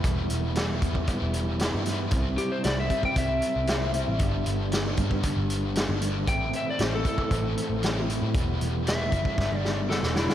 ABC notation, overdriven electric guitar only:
X:1
M:4/4
L:1/8
Q:1/4=116
K:Am
V:1 name="Overdriven electric guitar" clef=bass
[E,G,B,E]2 [E,G,B,E] [E,G,B,E] [E,G,B,E]2 [E,G,B,E] [E,G,B,E] | [C,G,CE]2 [C,G,CE] [C,G,CE] [C,G,CE]2 [C,G,CE] [C,G,CE] | [G,,D,G,B,D]2 [G,,D,G,B,D] [G,,D,G,B,D] [G,,D,G,B,D]2 [G,,D,G,B,D] [G,,D,G,B,D] | [A,,E,A,CE]2 [A,,E,A,CE] [A,,E,A,CE] [A,,E,A,CE]2 [A,,E,A,CE] [A,,E,A,CE] |
[E,G,B,E]2 [E,G,B,E] [E,G,B,E] [G,,D,G,B,D]2 [G,,D,G,B,D] [G,,D,G,B,D] |]